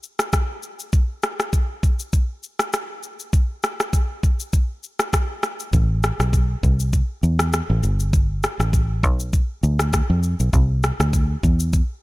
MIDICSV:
0, 0, Header, 1, 3, 480
1, 0, Start_track
1, 0, Tempo, 600000
1, 745, Time_signature, 4, 2, 24, 8
1, 9621, End_track
2, 0, Start_track
2, 0, Title_t, "Fingered electric bass"
2, 0, Program_c, 0, 33
2, 4585, Note_on_c, 0, 33, 103
2, 4881, Note_off_c, 0, 33, 0
2, 4957, Note_on_c, 0, 35, 84
2, 5234, Note_off_c, 0, 35, 0
2, 5307, Note_on_c, 0, 36, 90
2, 5603, Note_off_c, 0, 36, 0
2, 5784, Note_on_c, 0, 40, 90
2, 6081, Note_off_c, 0, 40, 0
2, 6157, Note_on_c, 0, 33, 87
2, 6243, Note_off_c, 0, 33, 0
2, 6265, Note_on_c, 0, 31, 100
2, 6753, Note_off_c, 0, 31, 0
2, 6877, Note_on_c, 0, 33, 91
2, 7228, Note_off_c, 0, 33, 0
2, 7228, Note_on_c, 0, 35, 90
2, 7523, Note_off_c, 0, 35, 0
2, 7706, Note_on_c, 0, 38, 92
2, 8002, Note_off_c, 0, 38, 0
2, 8077, Note_on_c, 0, 41, 88
2, 8268, Note_off_c, 0, 41, 0
2, 8318, Note_on_c, 0, 35, 88
2, 8404, Note_off_c, 0, 35, 0
2, 8425, Note_on_c, 0, 36, 105
2, 8722, Note_off_c, 0, 36, 0
2, 8798, Note_on_c, 0, 38, 90
2, 9075, Note_off_c, 0, 38, 0
2, 9148, Note_on_c, 0, 40, 91
2, 9443, Note_off_c, 0, 40, 0
2, 9621, End_track
3, 0, Start_track
3, 0, Title_t, "Drums"
3, 25, Note_on_c, 9, 82, 53
3, 105, Note_off_c, 9, 82, 0
3, 154, Note_on_c, 9, 37, 93
3, 155, Note_on_c, 9, 82, 71
3, 234, Note_off_c, 9, 37, 0
3, 235, Note_off_c, 9, 82, 0
3, 262, Note_on_c, 9, 82, 82
3, 264, Note_on_c, 9, 36, 90
3, 267, Note_on_c, 9, 37, 85
3, 342, Note_off_c, 9, 82, 0
3, 344, Note_off_c, 9, 36, 0
3, 347, Note_off_c, 9, 37, 0
3, 503, Note_on_c, 9, 82, 56
3, 583, Note_off_c, 9, 82, 0
3, 636, Note_on_c, 9, 82, 68
3, 716, Note_off_c, 9, 82, 0
3, 742, Note_on_c, 9, 82, 61
3, 744, Note_on_c, 9, 36, 104
3, 822, Note_off_c, 9, 82, 0
3, 824, Note_off_c, 9, 36, 0
3, 983, Note_on_c, 9, 82, 54
3, 988, Note_on_c, 9, 37, 87
3, 1063, Note_off_c, 9, 82, 0
3, 1068, Note_off_c, 9, 37, 0
3, 1117, Note_on_c, 9, 37, 81
3, 1118, Note_on_c, 9, 82, 60
3, 1197, Note_off_c, 9, 37, 0
3, 1198, Note_off_c, 9, 82, 0
3, 1224, Note_on_c, 9, 36, 84
3, 1224, Note_on_c, 9, 82, 74
3, 1304, Note_off_c, 9, 36, 0
3, 1304, Note_off_c, 9, 82, 0
3, 1466, Note_on_c, 9, 36, 90
3, 1467, Note_on_c, 9, 82, 52
3, 1546, Note_off_c, 9, 36, 0
3, 1547, Note_off_c, 9, 82, 0
3, 1595, Note_on_c, 9, 82, 80
3, 1675, Note_off_c, 9, 82, 0
3, 1703, Note_on_c, 9, 82, 70
3, 1705, Note_on_c, 9, 36, 88
3, 1783, Note_off_c, 9, 82, 0
3, 1785, Note_off_c, 9, 36, 0
3, 1946, Note_on_c, 9, 82, 52
3, 2026, Note_off_c, 9, 82, 0
3, 2075, Note_on_c, 9, 37, 90
3, 2077, Note_on_c, 9, 82, 71
3, 2155, Note_off_c, 9, 37, 0
3, 2157, Note_off_c, 9, 82, 0
3, 2185, Note_on_c, 9, 82, 81
3, 2189, Note_on_c, 9, 37, 83
3, 2265, Note_off_c, 9, 82, 0
3, 2269, Note_off_c, 9, 37, 0
3, 2425, Note_on_c, 9, 82, 56
3, 2505, Note_off_c, 9, 82, 0
3, 2557, Note_on_c, 9, 82, 68
3, 2637, Note_off_c, 9, 82, 0
3, 2664, Note_on_c, 9, 82, 62
3, 2665, Note_on_c, 9, 36, 104
3, 2744, Note_off_c, 9, 82, 0
3, 2745, Note_off_c, 9, 36, 0
3, 2905, Note_on_c, 9, 82, 57
3, 2910, Note_on_c, 9, 37, 85
3, 2985, Note_off_c, 9, 82, 0
3, 2990, Note_off_c, 9, 37, 0
3, 3041, Note_on_c, 9, 37, 84
3, 3041, Note_on_c, 9, 82, 63
3, 3121, Note_off_c, 9, 37, 0
3, 3121, Note_off_c, 9, 82, 0
3, 3145, Note_on_c, 9, 36, 86
3, 3147, Note_on_c, 9, 82, 77
3, 3225, Note_off_c, 9, 36, 0
3, 3227, Note_off_c, 9, 82, 0
3, 3387, Note_on_c, 9, 36, 90
3, 3389, Note_on_c, 9, 82, 50
3, 3467, Note_off_c, 9, 36, 0
3, 3469, Note_off_c, 9, 82, 0
3, 3518, Note_on_c, 9, 82, 81
3, 3598, Note_off_c, 9, 82, 0
3, 3624, Note_on_c, 9, 82, 73
3, 3626, Note_on_c, 9, 36, 88
3, 3704, Note_off_c, 9, 82, 0
3, 3706, Note_off_c, 9, 36, 0
3, 3867, Note_on_c, 9, 82, 52
3, 3947, Note_off_c, 9, 82, 0
3, 3996, Note_on_c, 9, 37, 91
3, 3997, Note_on_c, 9, 82, 74
3, 4076, Note_off_c, 9, 37, 0
3, 4077, Note_off_c, 9, 82, 0
3, 4105, Note_on_c, 9, 82, 81
3, 4106, Note_on_c, 9, 36, 87
3, 4110, Note_on_c, 9, 37, 87
3, 4185, Note_off_c, 9, 82, 0
3, 4186, Note_off_c, 9, 36, 0
3, 4190, Note_off_c, 9, 37, 0
3, 4344, Note_on_c, 9, 82, 55
3, 4345, Note_on_c, 9, 37, 78
3, 4424, Note_off_c, 9, 82, 0
3, 4425, Note_off_c, 9, 37, 0
3, 4477, Note_on_c, 9, 82, 67
3, 4557, Note_off_c, 9, 82, 0
3, 4584, Note_on_c, 9, 82, 62
3, 4585, Note_on_c, 9, 36, 105
3, 4664, Note_off_c, 9, 82, 0
3, 4665, Note_off_c, 9, 36, 0
3, 4826, Note_on_c, 9, 82, 55
3, 4831, Note_on_c, 9, 37, 85
3, 4906, Note_off_c, 9, 82, 0
3, 4911, Note_off_c, 9, 37, 0
3, 4960, Note_on_c, 9, 37, 84
3, 4961, Note_on_c, 9, 82, 61
3, 5040, Note_off_c, 9, 37, 0
3, 5041, Note_off_c, 9, 82, 0
3, 5065, Note_on_c, 9, 36, 89
3, 5066, Note_on_c, 9, 82, 72
3, 5145, Note_off_c, 9, 36, 0
3, 5146, Note_off_c, 9, 82, 0
3, 5307, Note_on_c, 9, 36, 87
3, 5309, Note_on_c, 9, 82, 50
3, 5387, Note_off_c, 9, 36, 0
3, 5389, Note_off_c, 9, 82, 0
3, 5437, Note_on_c, 9, 82, 80
3, 5517, Note_off_c, 9, 82, 0
3, 5543, Note_on_c, 9, 82, 73
3, 5546, Note_on_c, 9, 36, 93
3, 5623, Note_off_c, 9, 82, 0
3, 5626, Note_off_c, 9, 36, 0
3, 5786, Note_on_c, 9, 82, 53
3, 5866, Note_off_c, 9, 82, 0
3, 5914, Note_on_c, 9, 37, 92
3, 5916, Note_on_c, 9, 82, 70
3, 5994, Note_off_c, 9, 37, 0
3, 5996, Note_off_c, 9, 82, 0
3, 6025, Note_on_c, 9, 82, 83
3, 6029, Note_on_c, 9, 37, 86
3, 6105, Note_off_c, 9, 82, 0
3, 6109, Note_off_c, 9, 37, 0
3, 6264, Note_on_c, 9, 82, 56
3, 6344, Note_off_c, 9, 82, 0
3, 6398, Note_on_c, 9, 82, 67
3, 6478, Note_off_c, 9, 82, 0
3, 6506, Note_on_c, 9, 36, 106
3, 6506, Note_on_c, 9, 82, 63
3, 6586, Note_off_c, 9, 36, 0
3, 6586, Note_off_c, 9, 82, 0
3, 6746, Note_on_c, 9, 82, 58
3, 6751, Note_on_c, 9, 37, 86
3, 6826, Note_off_c, 9, 82, 0
3, 6831, Note_off_c, 9, 37, 0
3, 6881, Note_on_c, 9, 37, 80
3, 6882, Note_on_c, 9, 82, 61
3, 6961, Note_off_c, 9, 37, 0
3, 6962, Note_off_c, 9, 82, 0
3, 6986, Note_on_c, 9, 36, 90
3, 6988, Note_on_c, 9, 82, 75
3, 7066, Note_off_c, 9, 36, 0
3, 7068, Note_off_c, 9, 82, 0
3, 7227, Note_on_c, 9, 36, 91
3, 7230, Note_on_c, 9, 82, 52
3, 7307, Note_off_c, 9, 36, 0
3, 7310, Note_off_c, 9, 82, 0
3, 7358, Note_on_c, 9, 82, 82
3, 7438, Note_off_c, 9, 82, 0
3, 7464, Note_on_c, 9, 82, 71
3, 7466, Note_on_c, 9, 36, 92
3, 7544, Note_off_c, 9, 82, 0
3, 7546, Note_off_c, 9, 36, 0
3, 7707, Note_on_c, 9, 82, 56
3, 7787, Note_off_c, 9, 82, 0
3, 7835, Note_on_c, 9, 37, 88
3, 7837, Note_on_c, 9, 82, 72
3, 7915, Note_off_c, 9, 37, 0
3, 7917, Note_off_c, 9, 82, 0
3, 7945, Note_on_c, 9, 36, 95
3, 7945, Note_on_c, 9, 82, 83
3, 7950, Note_on_c, 9, 37, 81
3, 8025, Note_off_c, 9, 36, 0
3, 8025, Note_off_c, 9, 82, 0
3, 8030, Note_off_c, 9, 37, 0
3, 8185, Note_on_c, 9, 82, 56
3, 8265, Note_off_c, 9, 82, 0
3, 8318, Note_on_c, 9, 82, 72
3, 8398, Note_off_c, 9, 82, 0
3, 8426, Note_on_c, 9, 36, 106
3, 8426, Note_on_c, 9, 82, 62
3, 8506, Note_off_c, 9, 36, 0
3, 8506, Note_off_c, 9, 82, 0
3, 8666, Note_on_c, 9, 82, 55
3, 8671, Note_on_c, 9, 37, 83
3, 8746, Note_off_c, 9, 82, 0
3, 8751, Note_off_c, 9, 37, 0
3, 8802, Note_on_c, 9, 37, 82
3, 8802, Note_on_c, 9, 82, 63
3, 8882, Note_off_c, 9, 37, 0
3, 8882, Note_off_c, 9, 82, 0
3, 8906, Note_on_c, 9, 36, 90
3, 8906, Note_on_c, 9, 82, 74
3, 8986, Note_off_c, 9, 36, 0
3, 8986, Note_off_c, 9, 82, 0
3, 9147, Note_on_c, 9, 36, 90
3, 9149, Note_on_c, 9, 82, 50
3, 9227, Note_off_c, 9, 36, 0
3, 9229, Note_off_c, 9, 82, 0
3, 9277, Note_on_c, 9, 82, 84
3, 9357, Note_off_c, 9, 82, 0
3, 9384, Note_on_c, 9, 82, 67
3, 9386, Note_on_c, 9, 36, 89
3, 9464, Note_off_c, 9, 82, 0
3, 9466, Note_off_c, 9, 36, 0
3, 9621, End_track
0, 0, End_of_file